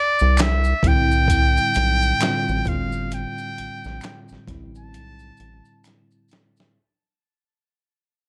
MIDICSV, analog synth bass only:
0, 0, Header, 1, 2, 480
1, 0, Start_track
1, 0, Key_signature, 0, "minor"
1, 0, Tempo, 909091
1, 1643, Time_signature, 4, 2, 24, 8
1, 4373, End_track
2, 0, Start_track
2, 0, Title_t, "Analog synth bass"
2, 0, Program_c, 0, 38
2, 114, Note_on_c, 0, 36, 83
2, 389, Note_off_c, 0, 36, 0
2, 442, Note_on_c, 0, 36, 88
2, 839, Note_off_c, 0, 36, 0
2, 932, Note_on_c, 0, 35, 90
2, 1126, Note_off_c, 0, 35, 0
2, 1314, Note_on_c, 0, 33, 87
2, 1391, Note_off_c, 0, 33, 0
2, 1406, Note_on_c, 0, 31, 93
2, 1721, Note_off_c, 0, 31, 0
2, 1894, Note_on_c, 0, 34, 48
2, 1948, Note_off_c, 0, 34, 0
2, 2034, Note_on_c, 0, 34, 84
2, 2111, Note_off_c, 0, 34, 0
2, 2275, Note_on_c, 0, 33, 50
2, 2311, Note_off_c, 0, 33, 0
2, 2368, Note_on_c, 0, 33, 91
2, 2612, Note_on_c, 0, 35, 93
2, 2620, Note_off_c, 0, 33, 0
2, 2807, Note_off_c, 0, 35, 0
2, 2851, Note_on_c, 0, 33, 86
2, 2965, Note_off_c, 0, 33, 0
2, 4373, End_track
0, 0, End_of_file